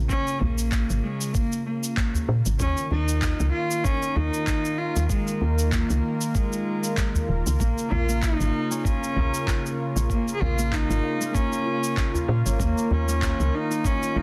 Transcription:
0.00 2.60 C#3 medium
0.00 14.22 A#3 medium
0.00 14.22 F4 medium
0.00 14.22 A#4 medium
0.09 0.42 C#4 loud
0.09 kick loud
0.09 shaker medium
0.27 shaker soft
0.41 0.84 A#1 medium
0.41 1.04 A#3 medium
0.41 udu medium
0.58 shaker medium
0.72 kick loud
0.72 clap medium
0.72 shaker medium
0.90 1.01 G#1 medium
0.90 shaker soft
1.03 1.35 G#3 medium
1.21 shaker medium
1.34 1.65 A#3 medium
1.34 kick loud
1.34 shaker medium
1.52 shaker soft
1.65 2.24 A#3 medium
1.84 shaker medium
1.97 kick loud
1.97 clap medium
1.97 shaker medium
2.14 udu medium
2.14 shaker soft
2.29 2.43 A#2 loud
2.46 2.57 G#1 loud
2.46 shaker medium
2.60 2.74 D#2 loud
2.60 7.60 D#3 medium
2.60 2.89 C#4 medium
2.60 kick loud
2.60 shaker medium
2.77 shaker soft
2.91 3.34 D#2 medium
2.91 3.50 D#4 loud
2.91 udu medium
3.09 shaker medium
3.22 kick loud
3.22 clap loud
3.22 shaker soft
3.40 3.51 C#2 medium
3.40 shaker soft
3.53 3.85 F4 loud
3.71 shaker medium
3.84 4.17 C#4 loud
3.84 kick loud
3.84 shaker medium
4.02 shaker soft
4.16 4.30 D#2 medium
4.16 4.79 D#4 loud
4.16 udu medium
4.34 shaker medium
4.47 kick loud
4.47 clap medium
4.47 shaker medium
4.65 shaker soft
4.78 5.09 F4 medium
4.96 5.07 D#2 medium
4.96 shaker medium
5.09 5.41 G#3 medium
5.09 kick loud
5.09 shaker medium
5.28 shaker soft
5.40 5.84 D#2 medium
5.40 6.36 A#3 medium
5.40 udu medium
5.59 shaker medium
5.72 kick loud
5.72 clap medium
5.72 shaker medium
5.90 6.01 C#2 loud
5.90 shaker soft
6.21 shaker medium
6.35 7.28 G#3 medium
6.35 kick loud
6.35 shaker medium
6.53 shaker soft
6.84 shaker medium
6.97 kick loud
6.97 clap medium
6.97 shaker medium
7.15 udu medium
7.15 shaker soft
7.29 7.43 D#1 loud
7.47 7.57 C#2 loud
7.47 shaker medium
7.60 7.74 A#1 loud
7.60 12.60 C#3 medium
7.60 8.08 A#3 medium
7.60 7.93 A#3 medium
7.60 kick medium
7.60 shaker medium
7.78 shaker soft
7.91 8.34 A#1 loud
7.91 8.24 F4 loud
7.91 udu medium
8.09 9.15 A#3 medium
8.09 shaker medium
8.22 8.79 D#4 loud
8.22 9.47 F4 medium
8.22 kick loud
8.22 clap medium
8.22 shaker medium
8.40 8.51 G#1 medium
8.40 shaker soft
8.71 9.95 C#4 medium
8.71 shaker medium
8.79 8.87 D#4 medium
8.85 9.79 C#4 medium
8.85 kick loud
8.85 shaker soft
9.04 shaker soft
9.16 9.30 A#1 medium
9.16 10.58 A#3 medium
9.16 udu medium
9.34 shaker medium
9.47 10.89 F4 medium
9.47 kick loud
9.47 clap medium
9.47 shaker medium
9.66 shaker soft
9.96 10.07 A#1 medium
9.96 12.85 C#4 medium
9.96 shaker medium
10.10 10.34 A#3 medium
10.10 kick medium
10.10 shaker medium
10.28 shaker soft
10.35 10.43 G#4 medium
10.41 10.84 A#1 medium
10.41 10.75 F4 medium
10.41 udu medium
10.58 11.20 A#3 medium
10.58 shaker medium
10.72 11.36 D#4 loud
10.72 kick loud
10.72 clap medium
10.72 shaker soft
10.89 11.01 G#1 medium
10.89 11.65 F4 medium
10.89 shaker soft
11.03 12.28 F5 medium
11.21 11.34 A#3 medium
11.21 shaker medium
11.34 12.59 A#3 medium
11.34 12.29 C#4 medium
11.34 kick medium
11.34 shaker soft
11.53 shaker soft
11.65 12.14 F4 medium
11.84 shaker medium
11.97 kick medium
11.97 clap medium
11.97 shaker medium
12.14 13.21 F4 medium
12.14 udu medium
12.14 shaker soft
12.28 12.43 A#2 loud
12.28 13.94 F5 loud
12.46 12.57 G#1 medium
12.46 14.22 C#5 medium
12.46 shaker medium
12.59 12.74 D#2 loud
12.59 14.22 D#3 medium
12.59 13.08 A#3 medium
12.59 12.93 A#3 medium
12.59 kick loud
12.59 shaker soft
12.78 shaker soft
12.91 13.34 D#2 medium
12.91 13.56 C#4 medium
12.91 udu medium
13.08 14.15 A#3 medium
13.08 shaker medium
13.22 14.22 F4 medium
13.22 kick loud
13.22 clap loud
13.22 shaker soft
13.40 13.51 C#2 medium
13.40 shaker soft
13.55 13.88 D#4 medium
13.70 14.22 D#4 medium
13.70 shaker medium
13.85 14.19 C#4 medium
13.85 kick loud
13.85 shaker medium
14.03 shaker soft
14.16 14.22 D#2 medium
14.16 14.22 A#3 medium
14.16 14.22 D#4 loud
14.16 udu medium

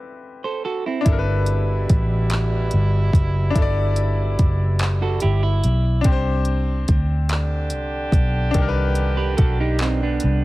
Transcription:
0.00 1.00 C4 medium
0.00 1.01 E4 medium
0.00 1.03 G4 medium
0.00 1.06 A4 medium
0.00 1.08 B4 medium
0.44 0.64 A4 medium
0.44 0.63 C5 medium
0.65 0.84 F#4 medium
0.65 0.84 A4 medium
0.86 1.25 C4 medium
0.86 1.25 E4 medium
1.01 3.49 D4 medium
1.01 3.51 E4 medium
1.06 1.85 G1 loud
1.06 5.60 B2 medium
1.06 5.60 G3 medium
1.06 5.60 E4 medium
1.06 3.53 A4 medium
1.06 kick loud
1.06 closed hi-hat medium
1.12 1.15 A#4 medium
1.19 3.58 B4 medium
1.46 closed hi-hat soft
1.90 2.69 A1 medium
1.90 kick medium
1.90 closed hi-hat medium
2.30 clap loud
2.30 closed hi-hat medium
2.71 3.10 G1 loud
2.71 closed hi-hat soft
3.13 3.51 F#1 loud
3.13 kick medium
3.13 closed hi-hat soft
3.50 5.99 D4 medium
3.55 4.35 G1 loud
3.55 6.01 E4 medium
3.55 6.03 A4 medium
3.55 kick loud
3.55 closed hi-hat medium
3.62 6.05 D5 medium
3.96 closed hi-hat soft
4.39 5.19 F#1 medium
4.39 kick medium
4.39 closed hi-hat soft
4.79 clap loud
4.79 closed hi-hat medium
5.02 5.21 F#4 medium
5.02 5.21 A4 medium
5.20 5.60 G1 medium
5.20 5.42 E4 medium
5.20 5.42 G4 medium
5.20 closed hi-hat soft
5.43 6.02 E4 medium
5.64 6.02 B1 medium
5.64 closed hi-hat soft
6.01 8.49 D4 medium
6.01 kick loud
6.01 closed hi-hat medium
6.05 6.85 C2 loud
6.05 8.51 C4 medium
6.05 8.53 G4 medium
6.12 8.55 C5 medium
6.45 closed hi-hat soft
6.88 7.73 D2 medium
6.88 kick medium
6.88 closed hi-hat medium
7.29 10.44 D3 medium
7.29 10.44 D4 medium
7.29 10.44 G4 medium
7.29 clap loud
7.29 closed hi-hat medium
7.70 8.10 C2 loud
7.70 closed hi-hat soft
8.12 8.51 B1 medium
8.12 kick loud
8.12 closed hi-hat medium
8.51 9.34 C2 loud
8.51 10.44 D#3 medium
8.51 10.44 D4 medium
8.51 kick loud
8.51 closed hi-hat medium
8.58 10.44 G4 medium
8.58 8.65 A#4 medium
8.69 10.44 B4 medium
8.95 closed hi-hat soft
9.17 9.38 G4 medium
9.17 9.37 B4 medium
9.37 10.18 B1 medium
9.37 9.58 F#4 medium
9.37 9.58 A4 medium
9.37 kick medium
9.37 closed hi-hat soft
9.60 9.80 D#4 medium
9.60 9.80 G4 medium
9.79 10.01 C4 medium
9.79 10.01 D#4 medium
9.79 clap loud
9.79 closed hi-hat medium
10.03 10.44 B3 medium
10.03 10.44 D4 medium
10.20 10.44 C2 medium
10.20 closed hi-hat medium

